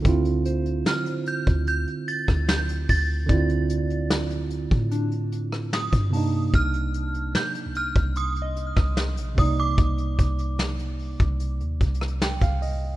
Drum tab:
HH |x--x--x--x--x--x--x--x--x--x--x-----x--x--o-----|x--x--x--x--x--x--x--x--x--x--x-----x--x--o-----|x--x--x--x--x--x--x--x--x--x--x-----x--x--o-----|x--x--x--x--x--x--o--x--x--x--x-x-x-x--x--o-----|
SD |------------o--------------------r--o-----------|------------o--------------------r--o-----------|------------o--------------------r--o-----------|------------o--------------------r--o-----------|
BD |o--------------------o-----------o--------o-----|o--------------------o-----------------o--------|o--------------------o-----------o--------o-----|o-----o--------------o--------o--------o--------|